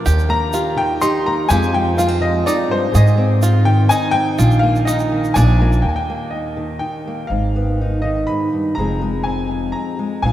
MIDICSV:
0, 0, Header, 1, 6, 480
1, 0, Start_track
1, 0, Key_signature, -3, "major"
1, 0, Tempo, 484262
1, 58, Time_signature, 3, 2, 24, 8
1, 10235, End_track
2, 0, Start_track
2, 0, Title_t, "Upright piano"
2, 0, Program_c, 0, 0
2, 296, Note_on_c, 0, 82, 114
2, 769, Note_on_c, 0, 79, 95
2, 788, Note_off_c, 0, 82, 0
2, 993, Note_off_c, 0, 79, 0
2, 1006, Note_on_c, 0, 84, 109
2, 1253, Note_on_c, 0, 82, 94
2, 1256, Note_off_c, 0, 84, 0
2, 1473, Note_on_c, 0, 80, 101
2, 1475, Note_off_c, 0, 82, 0
2, 1728, Note_off_c, 0, 80, 0
2, 1728, Note_on_c, 0, 79, 87
2, 1950, Note_off_c, 0, 79, 0
2, 1963, Note_on_c, 0, 77, 85
2, 2197, Note_on_c, 0, 75, 90
2, 2211, Note_off_c, 0, 77, 0
2, 2440, Note_on_c, 0, 74, 84
2, 2448, Note_off_c, 0, 75, 0
2, 2664, Note_off_c, 0, 74, 0
2, 2691, Note_on_c, 0, 72, 83
2, 2909, Note_off_c, 0, 72, 0
2, 2945, Note_on_c, 0, 75, 82
2, 3157, Note_off_c, 0, 75, 0
2, 3621, Note_on_c, 0, 79, 95
2, 3858, Note_on_c, 0, 80, 111
2, 3877, Note_off_c, 0, 79, 0
2, 4078, Note_on_c, 0, 79, 118
2, 4115, Note_off_c, 0, 80, 0
2, 4553, Note_on_c, 0, 77, 97
2, 4591, Note_off_c, 0, 79, 0
2, 4809, Note_on_c, 0, 75, 75
2, 4822, Note_off_c, 0, 77, 0
2, 5268, Note_off_c, 0, 75, 0
2, 5293, Note_on_c, 0, 80, 87
2, 5770, Note_on_c, 0, 79, 70
2, 5800, Note_off_c, 0, 80, 0
2, 5835, Note_on_c, 0, 80, 51
2, 5854, Note_off_c, 0, 79, 0
2, 5906, Note_on_c, 0, 79, 73
2, 5919, Note_off_c, 0, 80, 0
2, 6250, Note_on_c, 0, 75, 57
2, 6274, Note_off_c, 0, 79, 0
2, 6734, Note_on_c, 0, 79, 68
2, 6760, Note_off_c, 0, 75, 0
2, 7194, Note_off_c, 0, 79, 0
2, 7209, Note_on_c, 0, 77, 73
2, 7947, Note_on_c, 0, 75, 69
2, 7971, Note_off_c, 0, 77, 0
2, 8195, Note_on_c, 0, 83, 70
2, 8205, Note_off_c, 0, 75, 0
2, 8672, Note_on_c, 0, 82, 84
2, 8698, Note_off_c, 0, 83, 0
2, 9154, Note_on_c, 0, 80, 67
2, 9179, Note_off_c, 0, 82, 0
2, 9636, Note_on_c, 0, 82, 66
2, 9661, Note_off_c, 0, 80, 0
2, 10135, Note_on_c, 0, 80, 77
2, 10143, Note_off_c, 0, 82, 0
2, 10235, Note_off_c, 0, 80, 0
2, 10235, End_track
3, 0, Start_track
3, 0, Title_t, "Five-string banjo"
3, 0, Program_c, 1, 105
3, 57, Note_on_c, 1, 67, 81
3, 526, Note_off_c, 1, 67, 0
3, 532, Note_on_c, 1, 65, 74
3, 1002, Note_off_c, 1, 65, 0
3, 1011, Note_on_c, 1, 63, 79
3, 1480, Note_off_c, 1, 63, 0
3, 1490, Note_on_c, 1, 67, 84
3, 1958, Note_off_c, 1, 67, 0
3, 1970, Note_on_c, 1, 65, 74
3, 2436, Note_off_c, 1, 65, 0
3, 2447, Note_on_c, 1, 63, 84
3, 2914, Note_off_c, 1, 63, 0
3, 2923, Note_on_c, 1, 68, 91
3, 3391, Note_off_c, 1, 68, 0
3, 3396, Note_on_c, 1, 65, 82
3, 3867, Note_off_c, 1, 65, 0
3, 3875, Note_on_c, 1, 63, 81
3, 4342, Note_off_c, 1, 63, 0
3, 4346, Note_on_c, 1, 65, 89
3, 4821, Note_off_c, 1, 65, 0
3, 4830, Note_on_c, 1, 63, 91
3, 5303, Note_off_c, 1, 63, 0
3, 5310, Note_on_c, 1, 62, 94
3, 5784, Note_off_c, 1, 62, 0
3, 10235, End_track
4, 0, Start_track
4, 0, Title_t, "Steel-string acoustic guitar"
4, 0, Program_c, 2, 25
4, 48, Note_on_c, 2, 39, 71
4, 286, Note_on_c, 2, 58, 59
4, 533, Note_on_c, 2, 67, 53
4, 758, Note_on_c, 2, 51, 63
4, 1002, Note_off_c, 2, 67, 0
4, 1014, Note_on_c, 2, 67, 59
4, 1242, Note_off_c, 2, 58, 0
4, 1254, Note_on_c, 2, 58, 52
4, 1462, Note_off_c, 2, 67, 0
4, 1463, Note_off_c, 2, 58, 0
4, 1477, Note_off_c, 2, 39, 0
4, 1481, Note_on_c, 2, 41, 78
4, 1482, Note_off_c, 2, 51, 0
4, 1489, Note_on_c, 2, 53, 63
4, 1496, Note_on_c, 2, 56, 61
4, 1504, Note_on_c, 2, 60, 62
4, 1511, Note_on_c, 2, 65, 76
4, 1724, Note_off_c, 2, 56, 0
4, 1728, Note_on_c, 2, 56, 60
4, 1947, Note_off_c, 2, 60, 0
4, 1951, Note_on_c, 2, 58, 54
4, 2065, Note_off_c, 2, 58, 0
4, 2065, Note_on_c, 2, 60, 48
4, 2165, Note_off_c, 2, 53, 0
4, 2177, Note_on_c, 2, 53, 61
4, 2407, Note_off_c, 2, 41, 0
4, 2419, Note_on_c, 2, 41, 61
4, 2652, Note_off_c, 2, 41, 0
4, 2656, Note_on_c, 2, 43, 65
4, 2879, Note_off_c, 2, 53, 0
4, 2887, Note_off_c, 2, 43, 0
4, 2891, Note_on_c, 2, 44, 76
4, 2904, Note_off_c, 2, 65, 0
4, 2912, Note_off_c, 2, 60, 0
4, 3143, Note_off_c, 2, 56, 0
4, 3147, Note_on_c, 2, 60, 65
4, 3381, Note_on_c, 2, 63, 59
4, 3626, Note_on_c, 2, 51, 64
4, 3860, Note_off_c, 2, 63, 0
4, 3872, Note_on_c, 2, 63, 51
4, 4096, Note_off_c, 2, 60, 0
4, 4107, Note_on_c, 2, 60, 54
4, 4313, Note_off_c, 2, 44, 0
4, 4323, Note_off_c, 2, 60, 0
4, 4325, Note_off_c, 2, 63, 0
4, 4346, Note_on_c, 2, 46, 80
4, 4590, Note_on_c, 2, 58, 62
4, 4827, Note_on_c, 2, 63, 61
4, 5064, Note_off_c, 2, 51, 0
4, 5070, Note_off_c, 2, 46, 0
4, 5076, Note_on_c, 2, 51, 71
4, 5282, Note_off_c, 2, 63, 0
4, 5283, Note_off_c, 2, 58, 0
4, 5310, Note_on_c, 2, 46, 66
4, 5316, Note_off_c, 2, 51, 0
4, 5566, Note_on_c, 2, 58, 63
4, 5772, Note_off_c, 2, 58, 0
4, 5792, Note_on_c, 2, 39, 56
4, 5793, Note_off_c, 2, 46, 0
4, 6043, Note_on_c, 2, 58, 47
4, 6295, Note_on_c, 2, 63, 45
4, 6511, Note_on_c, 2, 51, 52
4, 6756, Note_off_c, 2, 63, 0
4, 6768, Note_on_c, 2, 63, 42
4, 6999, Note_off_c, 2, 58, 0
4, 7011, Note_on_c, 2, 58, 42
4, 7217, Note_off_c, 2, 63, 0
4, 7218, Note_off_c, 2, 58, 0
4, 7230, Note_off_c, 2, 39, 0
4, 7234, Note_on_c, 2, 44, 60
4, 7492, Note_on_c, 2, 59, 47
4, 7744, Note_on_c, 2, 63, 47
4, 7962, Note_off_c, 2, 51, 0
4, 7974, Note_on_c, 2, 51, 52
4, 8203, Note_off_c, 2, 44, 0
4, 8222, Note_on_c, 2, 44, 46
4, 8451, Note_off_c, 2, 44, 0
4, 8455, Note_on_c, 2, 43, 47
4, 8666, Note_off_c, 2, 59, 0
4, 8671, Note_off_c, 2, 63, 0
4, 8692, Note_off_c, 2, 43, 0
4, 8694, Note_off_c, 2, 51, 0
4, 8696, Note_on_c, 2, 41, 58
4, 8703, Note_on_c, 2, 53, 54
4, 8707, Note_on_c, 2, 56, 51
4, 8714, Note_on_c, 2, 60, 48
4, 8721, Note_on_c, 2, 68, 62
4, 8923, Note_off_c, 2, 56, 0
4, 8935, Note_on_c, 2, 56, 49
4, 9168, Note_off_c, 2, 60, 0
4, 9180, Note_on_c, 2, 60, 44
4, 9423, Note_off_c, 2, 53, 0
4, 9427, Note_on_c, 2, 53, 51
4, 9659, Note_off_c, 2, 60, 0
4, 9669, Note_on_c, 2, 60, 44
4, 9889, Note_off_c, 2, 56, 0
4, 9901, Note_on_c, 2, 56, 46
4, 10112, Note_off_c, 2, 41, 0
4, 10115, Note_off_c, 2, 53, 0
4, 10116, Note_off_c, 2, 60, 0
4, 10125, Note_off_c, 2, 68, 0
4, 10140, Note_off_c, 2, 56, 0
4, 10142, Note_on_c, 2, 46, 59
4, 10153, Note_on_c, 2, 53, 53
4, 10158, Note_on_c, 2, 58, 47
4, 10166, Note_on_c, 2, 62, 50
4, 10171, Note_on_c, 2, 65, 56
4, 10235, Note_off_c, 2, 46, 0
4, 10235, Note_off_c, 2, 53, 0
4, 10235, Note_off_c, 2, 58, 0
4, 10235, Note_off_c, 2, 62, 0
4, 10235, Note_off_c, 2, 65, 0
4, 10235, End_track
5, 0, Start_track
5, 0, Title_t, "Upright bass"
5, 0, Program_c, 3, 32
5, 61, Note_on_c, 3, 39, 85
5, 975, Note_off_c, 3, 39, 0
5, 1486, Note_on_c, 3, 41, 97
5, 2403, Note_off_c, 3, 41, 0
5, 2919, Note_on_c, 3, 44, 102
5, 3837, Note_off_c, 3, 44, 0
5, 4351, Note_on_c, 3, 34, 105
5, 5273, Note_off_c, 3, 34, 0
5, 5314, Note_on_c, 3, 34, 120
5, 5771, Note_off_c, 3, 34, 0
5, 5789, Note_on_c, 3, 39, 74
5, 6716, Note_off_c, 3, 39, 0
5, 7236, Note_on_c, 3, 32, 72
5, 8164, Note_off_c, 3, 32, 0
5, 8688, Note_on_c, 3, 29, 77
5, 9615, Note_off_c, 3, 29, 0
5, 10139, Note_on_c, 3, 34, 78
5, 10235, Note_off_c, 3, 34, 0
5, 10235, End_track
6, 0, Start_track
6, 0, Title_t, "Drums"
6, 63, Note_on_c, 9, 82, 88
6, 162, Note_off_c, 9, 82, 0
6, 188, Note_on_c, 9, 82, 26
6, 287, Note_off_c, 9, 82, 0
6, 528, Note_on_c, 9, 82, 84
6, 627, Note_off_c, 9, 82, 0
6, 1010, Note_on_c, 9, 82, 86
6, 1109, Note_off_c, 9, 82, 0
6, 1484, Note_on_c, 9, 82, 87
6, 1583, Note_off_c, 9, 82, 0
6, 1616, Note_on_c, 9, 82, 27
6, 1715, Note_off_c, 9, 82, 0
6, 1971, Note_on_c, 9, 82, 89
6, 2071, Note_off_c, 9, 82, 0
6, 2455, Note_on_c, 9, 82, 86
6, 2554, Note_off_c, 9, 82, 0
6, 2923, Note_on_c, 9, 82, 84
6, 3022, Note_off_c, 9, 82, 0
6, 3043, Note_on_c, 9, 82, 27
6, 3143, Note_off_c, 9, 82, 0
6, 3395, Note_on_c, 9, 82, 93
6, 3494, Note_off_c, 9, 82, 0
6, 3874, Note_on_c, 9, 82, 99
6, 3973, Note_off_c, 9, 82, 0
6, 4353, Note_on_c, 9, 82, 86
6, 4452, Note_off_c, 9, 82, 0
6, 4472, Note_on_c, 9, 82, 29
6, 4571, Note_off_c, 9, 82, 0
6, 4713, Note_on_c, 9, 82, 32
6, 4812, Note_off_c, 9, 82, 0
6, 4836, Note_on_c, 9, 82, 82
6, 4936, Note_off_c, 9, 82, 0
6, 4950, Note_on_c, 9, 82, 30
6, 5049, Note_off_c, 9, 82, 0
6, 5197, Note_on_c, 9, 82, 34
6, 5296, Note_off_c, 9, 82, 0
6, 5312, Note_on_c, 9, 82, 88
6, 5411, Note_off_c, 9, 82, 0
6, 5675, Note_on_c, 9, 82, 30
6, 5774, Note_off_c, 9, 82, 0
6, 10235, End_track
0, 0, End_of_file